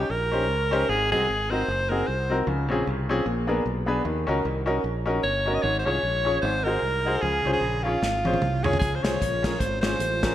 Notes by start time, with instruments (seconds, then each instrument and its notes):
Already playing: alto saxophone G4
0.10 fingered electric bass A#1, alto saxophone A#4
0.31 upright piano C#4 D#4 G4 C5
0.49 fingered electric bass C#2
0.71 upright piano C#4 D#4 G4 C5
0.89 fingered electric bass G#1, upright piano G#2, alto saxophone G#4
1.11 fingered electric bass C2, upright piano C4 D#4 F#4 G#4, alto saxophone G#4
1.29 fingered electric bass G#1
1.51 upright piano C4 D#4 F#4 A#4, alto saxophone C5
1.68 fingered electric bass F#1
1.89 upright piano C4 D#4 F#4 G#4, alto saxophone A#4
2.07 fingered electric bass C2, alto saxophone C5
2.30 upright piano C4 D#4 F#4 A#4
2.47 fingered electric bass C#2, upright piano C#3
2.69 fingered electric bass A#1, upright piano C4 C#4 F4 G#4
2.87 fingered electric bass C2
3.09 upright piano C4 C#4 F4 G#4
3.26 fingered electric bass A#1, upright piano A#2
3.47 upright piano B3 D4 G#4 A#4
3.66 fingered electric bass B1
3.86 upright piano B3 D4 G#4 B4
4.05 fingered electric bass D#2, upright piano D#3
4.27 fingered electric bass C#2, upright piano C#4 D#4 F#4 A#4
4.45 fingered electric bass C2
4.66 upright piano C#4 D#4 F#4 A#4
4.84 fingered electric bass A#1
5.06 upright piano C#4 D#4 F#4 A#4
5.23 fingered electric bass G1, alto saxophone C#5
5.46 upright piano C#4 D#4 F#4 A#4
5.54 alto saxophone D#5
5.62 fingered electric bass G#1, upright piano G#2, alto saxophone C#5
5.79 alto saxophone C5
5.85 fingered electric bass C2, upright piano C#4 F4 G#4 C#5, alto saxophone C#5
6.03 fingered electric bass A#1
6.25 upright piano C#4 F4 G#4 C#5
6.41 fingered electric bass G#1, upright piano G#2, alto saxophone C5
6.64 upright piano D#4 F#4 G#4 C5, alto saxophone A#4
6.82 fingered electric bass C2
7.05 upright piano D#4 F#4 G#4 C5
7.22 fingered electric bass C#2, upright piano C#3, alto saxophone G#4
7.45 fingered electric bass C2, upright piano C#4 F4 G#4 C5
7.53 alto saxophone G#4
7.61 fingered electric bass A#1
7.83 upright piano C#4 F4 G#4 C#5, alto saxophone F4
8.02 fingered electric bass G#1, snare
8.25 upright piano C#4 F4 G#4 C5, high tom
8.34 high tom
8.42 fingered electric bass C2, mid tom
8.64 upright piano C#4 F4 G#4 C#5, alto saxophone G#4, floor tom
8.73 floor tom
8.79 fingered electric bass C#2, upright piano C#3, french horn section G#3 C#4 F4, alto saxophone G#4, kick, closed hi-hat
8.95 alto saxophone C5
9.03 fingered electric bass C2, upright piano C#4 F4 G#4 C5, alto saxophone C#5, snare, closed hi-hat
9.22 fingered electric bass A#1, kick, closed hi-hat
9.43 upright piano C#4 F4 G#4 A#4, kick, snare, closed hi-hat
9.59 fingered electric bass G#1, alto saxophone C5, kick, closed hi-hat
9.81 upright piano C#4 F4 G#4 C5, alto saxophone C5, snare, closed hi-hat
9.99 fingered electric bass A1, closed hi-hat
10.23 upright piano C#4 F4 G#4 A#4, kick, snare, closed hi-hat